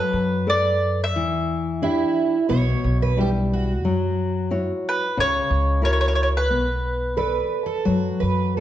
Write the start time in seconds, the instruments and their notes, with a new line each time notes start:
Already playing: nylon-string guitar F#3, mandolin B4
0.13 upright bass F#2
0.47 nylon-string guitar A4 B4 D5, mandolin D5
1.04 mandolin E5
1.16 upright bass E2, nylon-string guitar E3
1.82 nylon-string guitar D4 E4 G4, twelve-string acoustic guitar E4
2.49 upright bass B1, nylon-string guitar B2, twelve-string acoustic guitar C#5
2.84 upright bass B1
3.02 twelve-string acoustic guitar B4
3.17 nylon-string guitar G3 D4 E4, twelve-string acoustic guitar G4
3.53 twelve-string acoustic guitar F#4
3.85 upright bass F#2, nylon-string guitar F#3
4.51 nylon-string guitar E4 F#4 C#5
4.89 mandolin B4
5.17 upright bass C#2, nylon-string guitar C#3, mandolin C#5
5.50 upright bass C#2
5.82 nylon-string guitar E4 F#4 A#4, mandolin C#5
5.93 mandolin C#5
6.01 mandolin C#5
6.08 mandolin C#5
6.15 mandolin C#5
6.23 mandolin C#5
6.37 mandolin B4
6.50 upright bass B1, nylon-string guitar B3
7.17 nylon-string guitar A4 B4 D5, twelve-string acoustic guitar B4
7.66 twelve-string acoustic guitar A4
7.85 upright bass F#2, nylon-string guitar F#3, twelve-string acoustic guitar F#4
8.20 upright bass F#2, twelve-string acoustic guitar B4
8.57 twelve-string acoustic guitar A4